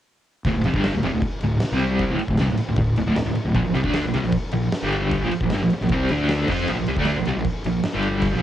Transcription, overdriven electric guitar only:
0.47 D2 A2
0.57 D2 A2
0.66 F2 C3
0.75 G2 D3 G3
0.94 D2 A2
1.04 F2 C3
1.14 D2 A2
1.44 D2 A2
1.63 muted overdriven electric guitar stroke
1.73 C3 G3 C4
2.10 D2 A2
2.20 muted overdriven electric guitar stroke
2.31 D2 A2
2.40 C3 G3
2.50 D2 A2
2.59 muted overdriven electric guitar stroke
2.69 D2 A2
2.78 D2 A2
2.98 D2 A2
3.07 D2 A2
3.17 D2 A2
3.26 D2 A2
3.36 muted overdriven electric guitar stroke
3.45 D2 A2
3.55 A#2 F3
3.65 A#2 F3
3.74 C3 G3
3.84 D3 A3 D4
4.05 A#2 F3
4.14 C3 G3
4.25 A#2 F3
4.53 A#2 F3
4.72 muted overdriven electric guitar stroke
4.83 G2 D3 G3
5.23 A#2 F3
5.33 muted overdriven electric guitar stroke
5.43 A#2 F3
5.53 G2 D3
5.63 A#2 F3
5.73 muted overdriven electric guitar stroke
5.83 A#2 F3
5.92 C3 G3 C4
6.11 D3 A3 D4
6.49 F3 C4 F4
6.69 A#2 F3
6.79 A#2 F3
6.88 C3 G3
6.98 D3 A3 D4
7.17 A#2 F3
7.27 C3 G3
7.36 A#2 F3
7.66 A#2 F3
7.85 muted overdriven electric guitar stroke
7.93 G2 D3 G3
8.32 A#2 F3

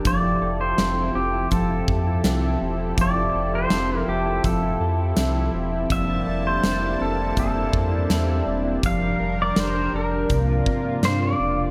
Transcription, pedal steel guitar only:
0.07 D5
0.61 C5
1.15 G4
1.52 A4
3.01 D5
3.55 C5
3.99 A#4
4.09 G4
4.45 A4
5.92 E5
6.47 C5
7.02 A4
7.39 A4
8.86 F5
9.42 D5
9.60 C5
9.96 A#4
11.05 C5
11.23 D5

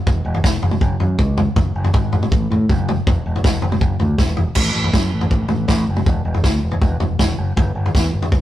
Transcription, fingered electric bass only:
0.06 E1
0.25 E1
0.44 F1
0.62 F#1
0.81 F#1
1.01 F#2
1.18 C#2
1.56 F#1
1.75 F#1
1.94 G#1
2.31 A1
2.50 A2
2.69 F#1
3.07 E1
3.26 E1
3.44 E1
3.63 F#1
3.81 F#1
4.00 D2
4.19 E1
4.56 A1
4.74 A1
4.93 F#2
5.12 A1
5.30 A1
5.49 A1
5.69 A1
5.87 F#1
6.06 E1
6.25 E1
6.44 D2
6.63 E1
6.82 E1
7.01 E1
7.19 E1
7.38 F#1
7.56 G1
7.75 G1
7.95 E2
8.13 G1
8.32 G1

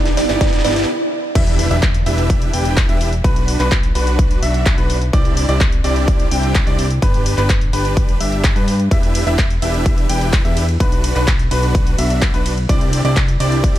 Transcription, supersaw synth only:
Already playing: B3 D4 E4 G4 D5
0.29 B3 D4 E4 G4 D5
0.41 B3 D4 E4 G4 D5
0.64 B3 D4 E4 G4 D5
1.35 D4 E4 G4 B4 E5
1.71 D4 E4 G4 B4 E5
2.06 D4 E4 G4 B4 E5
2.54 D4 E4 G4 B4 G5
2.89 D4 E4 G4 B4 E5
3.24 D4 F#4 B4
3.60 D4 F#4 B4
3.95 D4 F#4 B4
4.42 D4 F#4 E5
4.78 D4 F#4 B4
5.13 C4 D4 E4 G4 D5
5.49 C4 D4 E4 G4 D5
5.84 C4 D4 E4 G4 D5
6.31 C4 D4 E4 G4 G5
6.67 C4 D4 E4 G4 D5
7.02 D4 G4 B4
7.38 D4 G4 B4
7.73 D4 G4 B4
8.20 D4 G4 E5
8.56 D4 G4 B4
8.91 D4 E4 G4 B4 E5
9.27 D4 E4 G4 B4 E5
9.62 D4 E4 G4 B4 E5
10.09 D4 E4 G4 B4 G5
10.45 D4 E4 G4 B4 E5
10.80 D4 F#4 B4
11.16 D4 F#4 B4
11.51 D4 F#4 B4
11.98 D4 F#4 E5
12.34 D4 F#4 B4
12.69 C4 D4 E4 G4 D5
13.05 C4 D4 E4 G4 D5
13.40 C4 D4 E4 G4 D5

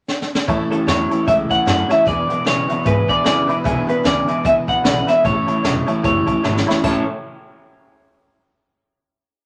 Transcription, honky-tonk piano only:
0.48 C#5 E5 A5
0.71 C#5 E5 A5
0.87 C#5 E5 A5
1.10 C#5 E5 A5
1.27 C#5 E5 A5
1.49 C#5 E5 A5
1.66 C#5 E5 A5
1.89 C#5 E5 A5
2.05 B4 E5 G#5
2.29 B4 E5 F#5
2.45 B4 E5 G#5
2.68 B4 E5 F#5
2.85 B4 E5 G#5
3.09 B4 E5 G#5
3.24 B4 E5 G#5
3.47 B4 E5 B5
3.64 B4 E5 G#5
3.87 B4 E5 B5
4.04 B4 E5 G#5
4.28 B4 E5 G#5
4.44 B4 E5 G#5
4.68 B4 E5 B5
4.84 B4 E5 B5
5.07 B4 E5 B5
5.24 C#5 E5 A5
5.46 C#5 E5 A5
5.63 C#5 E5 A5
5.86 C#5 E5 A5
6.03 C#5 E5 A5
6.26 C#5 E5 A5
6.43 C#5 E5 A5
6.67 C#5 E5 B5
6.84 C#5 E5 A5

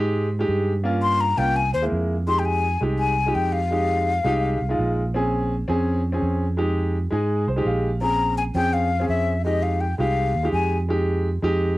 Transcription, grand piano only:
Already playing: G#3 D#4 G4
0.39 G#3 D#4 G4
0.83 A#3 C#4 F4
1.37 A#3 C#4 F4
1.82 G#3 A#3 E4
2.27 G#3 D#4 G4
2.81 G#3 D#4 G4
3.26 G#3 D#4 G4
3.71 G#3 D#4 G4
4.24 G#3 D#4 G4
4.69 G#3 D#4 F4
5.14 C4 C#4 G#4
5.68 C4 C#4 G#4
6.12 C4 C#4 G#4
6.57 G#3 D#4 G4
7.10 G#3 D#4 G#4
7.48 C5
7.56 G#3 D#4 G4
7.66 F5
8.01 C4 C#4 G#4
8.55 C4 C#4 G#4
9.00 C4 C#4 G#4
9.45 G#3 D#4 G4
9.98 G#3 D#4 G4
10.43 G#3 D#4 G4
10.89 G#3 D#4 G4
11.42 G#3 D#4 G4

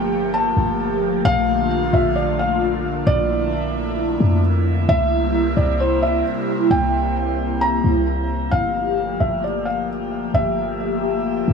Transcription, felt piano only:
Already playing: G5
0.34 A5
1.25 F5
1.94 E5
2.16 D5
2.39 F5
3.07 D5
4.89 E5
5.57 D5
5.80 C5
6.02 E5
6.71 G5
7.61 A#5
8.51 F5
9.20 E5
9.44 D5
9.65 F5
10.34 E5

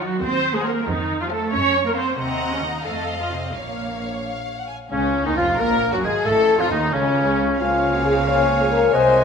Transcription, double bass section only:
0.21 D#2
0.87 F2
1.52 F#2
2.19 D#2
2.85 F2
3.54 A#1
4.92 C#2
5.37 F1
5.60 A#1
6.04 G#1
6.27 A1
6.70 D#2
6.92 C#2
7.60 C#2
8.93 C2

